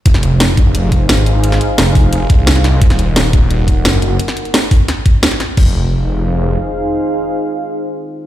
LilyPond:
<<
  \new Staff \with { instrumentName = "Analog synth pad" } { \time 4/4 \key f \phrygian \tempo 4 = 174 << { <aes' c'' f''>1~ | <aes' c'' f''>1 | <ges' bes' ges''>1 | r1 |
<ees' aes' c'' f''>1~ | <ees' aes' c'' f''>1 | } \\ { ees'1~ | ees'1~ | ees'1 | r1 |
r1 | r1 | } >> }
  \new Staff \with { instrumentName = "Detuned saw bass" } { \clef bass \time 4/4 \key f \phrygian f,,4. f,,4. aes,,4~ | aes,,8 r8 f,,4. c,4. | ees,,4. ees,,4. ges,,4 | r1 |
f,,2. r4 | r1 | }
  \new DrumStaff \with { instrumentName = "Drums" } \drummode { \time 4/4 <hh bd>16 sn16 hh8 <hh sn>8 <hh bd>8 hh8 <hh bd>8 <hh sn>8 hh8 | hh16 sn16 hh8 <hh sn>8 <hho bd>8 hh8 <hh bd>8 <hh sn>16 sn16 <hh sn>8 | <hh bd>16 sn16 hh8 <hh sn>8 <hh bd>8 hh8 <hh bd>8 <hh sn>8 hh8 | hh16 sn16 hh16 hh16 <hh sn>8 <hho bd>8 <hh sn>8 <hh bd>8 <hh sn>16 <hh sn>16 <hh sn>8 |
<cymc bd>4 r4 r4 r4 | r4 r4 r4 r4 | }
>>